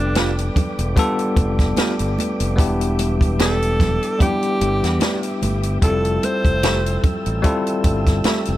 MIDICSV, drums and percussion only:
0, 0, Header, 1, 2, 480
1, 0, Start_track
1, 0, Tempo, 809280
1, 1533, Time_signature, 4, 2, 24, 8
1, 5085, End_track
2, 0, Start_track
2, 0, Title_t, "Drums"
2, 90, Note_on_c, 9, 42, 83
2, 96, Note_on_c, 9, 63, 65
2, 97, Note_on_c, 9, 38, 106
2, 149, Note_off_c, 9, 42, 0
2, 155, Note_off_c, 9, 63, 0
2, 156, Note_off_c, 9, 38, 0
2, 228, Note_on_c, 9, 42, 51
2, 287, Note_off_c, 9, 42, 0
2, 332, Note_on_c, 9, 36, 84
2, 334, Note_on_c, 9, 42, 77
2, 337, Note_on_c, 9, 62, 32
2, 337, Note_on_c, 9, 64, 70
2, 391, Note_off_c, 9, 36, 0
2, 393, Note_off_c, 9, 42, 0
2, 396, Note_off_c, 9, 62, 0
2, 396, Note_off_c, 9, 64, 0
2, 466, Note_on_c, 9, 42, 47
2, 526, Note_off_c, 9, 42, 0
2, 573, Note_on_c, 9, 36, 95
2, 575, Note_on_c, 9, 42, 91
2, 578, Note_on_c, 9, 62, 52
2, 632, Note_off_c, 9, 36, 0
2, 635, Note_off_c, 9, 42, 0
2, 637, Note_off_c, 9, 62, 0
2, 704, Note_on_c, 9, 42, 43
2, 763, Note_off_c, 9, 42, 0
2, 810, Note_on_c, 9, 36, 84
2, 812, Note_on_c, 9, 42, 81
2, 812, Note_on_c, 9, 62, 52
2, 869, Note_off_c, 9, 36, 0
2, 871, Note_off_c, 9, 42, 0
2, 871, Note_off_c, 9, 62, 0
2, 943, Note_on_c, 9, 36, 85
2, 946, Note_on_c, 9, 42, 51
2, 948, Note_on_c, 9, 38, 34
2, 1002, Note_off_c, 9, 36, 0
2, 1005, Note_off_c, 9, 42, 0
2, 1007, Note_off_c, 9, 38, 0
2, 1048, Note_on_c, 9, 63, 67
2, 1050, Note_on_c, 9, 42, 84
2, 1057, Note_on_c, 9, 38, 108
2, 1107, Note_off_c, 9, 63, 0
2, 1109, Note_off_c, 9, 42, 0
2, 1117, Note_off_c, 9, 38, 0
2, 1181, Note_on_c, 9, 42, 50
2, 1240, Note_off_c, 9, 42, 0
2, 1296, Note_on_c, 9, 63, 65
2, 1303, Note_on_c, 9, 42, 75
2, 1356, Note_off_c, 9, 63, 0
2, 1362, Note_off_c, 9, 42, 0
2, 1423, Note_on_c, 9, 42, 56
2, 1482, Note_off_c, 9, 42, 0
2, 1533, Note_on_c, 9, 36, 117
2, 1536, Note_on_c, 9, 42, 99
2, 1593, Note_off_c, 9, 36, 0
2, 1596, Note_off_c, 9, 42, 0
2, 1667, Note_on_c, 9, 42, 47
2, 1726, Note_off_c, 9, 42, 0
2, 1772, Note_on_c, 9, 42, 79
2, 1776, Note_on_c, 9, 62, 49
2, 1831, Note_off_c, 9, 42, 0
2, 1835, Note_off_c, 9, 62, 0
2, 1903, Note_on_c, 9, 36, 88
2, 1910, Note_on_c, 9, 42, 52
2, 1962, Note_off_c, 9, 36, 0
2, 1969, Note_off_c, 9, 42, 0
2, 2013, Note_on_c, 9, 42, 91
2, 2018, Note_on_c, 9, 63, 65
2, 2020, Note_on_c, 9, 38, 111
2, 2072, Note_off_c, 9, 42, 0
2, 2077, Note_off_c, 9, 63, 0
2, 2079, Note_off_c, 9, 38, 0
2, 2150, Note_on_c, 9, 42, 50
2, 2209, Note_off_c, 9, 42, 0
2, 2253, Note_on_c, 9, 36, 89
2, 2255, Note_on_c, 9, 42, 71
2, 2259, Note_on_c, 9, 38, 32
2, 2260, Note_on_c, 9, 62, 36
2, 2260, Note_on_c, 9, 64, 72
2, 2313, Note_off_c, 9, 36, 0
2, 2314, Note_off_c, 9, 42, 0
2, 2319, Note_off_c, 9, 38, 0
2, 2320, Note_off_c, 9, 62, 0
2, 2320, Note_off_c, 9, 64, 0
2, 2388, Note_on_c, 9, 42, 47
2, 2447, Note_off_c, 9, 42, 0
2, 2493, Note_on_c, 9, 36, 91
2, 2495, Note_on_c, 9, 42, 92
2, 2502, Note_on_c, 9, 62, 59
2, 2502, Note_on_c, 9, 64, 77
2, 2553, Note_off_c, 9, 36, 0
2, 2554, Note_off_c, 9, 42, 0
2, 2561, Note_off_c, 9, 62, 0
2, 2561, Note_off_c, 9, 64, 0
2, 2625, Note_on_c, 9, 42, 45
2, 2684, Note_off_c, 9, 42, 0
2, 2735, Note_on_c, 9, 42, 78
2, 2737, Note_on_c, 9, 62, 51
2, 2794, Note_off_c, 9, 42, 0
2, 2796, Note_off_c, 9, 62, 0
2, 2869, Note_on_c, 9, 42, 51
2, 2871, Note_on_c, 9, 38, 35
2, 2929, Note_off_c, 9, 42, 0
2, 2931, Note_off_c, 9, 38, 0
2, 2968, Note_on_c, 9, 63, 64
2, 2970, Note_on_c, 9, 42, 77
2, 2978, Note_on_c, 9, 38, 113
2, 3027, Note_off_c, 9, 63, 0
2, 3029, Note_off_c, 9, 42, 0
2, 3037, Note_off_c, 9, 38, 0
2, 3101, Note_on_c, 9, 42, 49
2, 3161, Note_off_c, 9, 42, 0
2, 3217, Note_on_c, 9, 63, 67
2, 3218, Note_on_c, 9, 42, 66
2, 3276, Note_off_c, 9, 63, 0
2, 3277, Note_off_c, 9, 42, 0
2, 3341, Note_on_c, 9, 42, 52
2, 3400, Note_off_c, 9, 42, 0
2, 3453, Note_on_c, 9, 36, 115
2, 3453, Note_on_c, 9, 42, 101
2, 3512, Note_off_c, 9, 36, 0
2, 3512, Note_off_c, 9, 42, 0
2, 3587, Note_on_c, 9, 42, 47
2, 3646, Note_off_c, 9, 42, 0
2, 3695, Note_on_c, 9, 42, 75
2, 3699, Note_on_c, 9, 62, 48
2, 3755, Note_off_c, 9, 42, 0
2, 3758, Note_off_c, 9, 62, 0
2, 3823, Note_on_c, 9, 36, 88
2, 3827, Note_on_c, 9, 42, 52
2, 3883, Note_off_c, 9, 36, 0
2, 3887, Note_off_c, 9, 42, 0
2, 3933, Note_on_c, 9, 42, 85
2, 3936, Note_on_c, 9, 63, 72
2, 3940, Note_on_c, 9, 38, 109
2, 3992, Note_off_c, 9, 42, 0
2, 3995, Note_off_c, 9, 63, 0
2, 3999, Note_off_c, 9, 38, 0
2, 4070, Note_on_c, 9, 42, 52
2, 4129, Note_off_c, 9, 42, 0
2, 4173, Note_on_c, 9, 36, 91
2, 4173, Note_on_c, 9, 42, 79
2, 4175, Note_on_c, 9, 62, 34
2, 4175, Note_on_c, 9, 64, 72
2, 4233, Note_off_c, 9, 36, 0
2, 4233, Note_off_c, 9, 42, 0
2, 4235, Note_off_c, 9, 62, 0
2, 4235, Note_off_c, 9, 64, 0
2, 4305, Note_on_c, 9, 42, 46
2, 4364, Note_off_c, 9, 42, 0
2, 4413, Note_on_c, 9, 42, 88
2, 4413, Note_on_c, 9, 62, 54
2, 4414, Note_on_c, 9, 36, 93
2, 4472, Note_off_c, 9, 42, 0
2, 4472, Note_off_c, 9, 62, 0
2, 4473, Note_off_c, 9, 36, 0
2, 4547, Note_on_c, 9, 42, 42
2, 4606, Note_off_c, 9, 42, 0
2, 4651, Note_on_c, 9, 36, 85
2, 4651, Note_on_c, 9, 62, 51
2, 4654, Note_on_c, 9, 42, 78
2, 4710, Note_off_c, 9, 62, 0
2, 4711, Note_off_c, 9, 36, 0
2, 4713, Note_off_c, 9, 42, 0
2, 4784, Note_on_c, 9, 36, 88
2, 4785, Note_on_c, 9, 42, 52
2, 4787, Note_on_c, 9, 38, 34
2, 4843, Note_off_c, 9, 36, 0
2, 4844, Note_off_c, 9, 42, 0
2, 4847, Note_off_c, 9, 38, 0
2, 4887, Note_on_c, 9, 42, 79
2, 4891, Note_on_c, 9, 63, 63
2, 4895, Note_on_c, 9, 38, 120
2, 4947, Note_off_c, 9, 42, 0
2, 4950, Note_off_c, 9, 63, 0
2, 4955, Note_off_c, 9, 38, 0
2, 5014, Note_on_c, 9, 42, 50
2, 5073, Note_off_c, 9, 42, 0
2, 5085, End_track
0, 0, End_of_file